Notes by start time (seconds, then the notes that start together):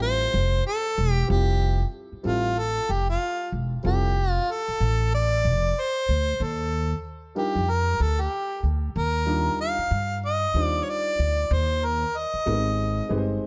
Already playing: A1 G3 C4 E4 F4 G4
0.02 C5
0.34 F1
0.67 A4
0.98 E1
1.12 G4
1.27 F1 G3 C4 E4 F4 G4
2.12 muted upright bass stroke
2.23 A1 G3 C4 E4 F4 A4
2.59 A4
2.89 F1 G4
3.10 F4
3.52 E1
3.83 F1 G3 C4 E4 F4 G4 A4
4.31 F4
4.52 A4
4.68 muted upright bass stroke
4.80 A1
5.14 D5
5.45 F1
5.81 C5
6.09 D2
6.40 D#2 A4
7.35 G3 D4 D#4 F4 G4 A#4
7.56 F2
7.70 A#4
8.00 D2 A4
8.21 G4
8.63 D2
8.96 D#2 A#4
9.26 G3 D4 D#4 F4 G4
9.61 F5
9.78 muted upright bass stroke
9.91 G2
10.25 D#5
10.54 D#2 G3 D4 D#4 F4 C5
10.63 D5
10.84 C#5
10.90 D5
11.19 D2
11.51 D#2 C5
11.85 A#4
12.18 D#5
12.34 muted upright bass stroke
12.46 G#1 G#3 B3 D#4 G4 A#4
12.53 C4
13.09 G1 G#3 C4 D#4 G4 B4
13.18 C5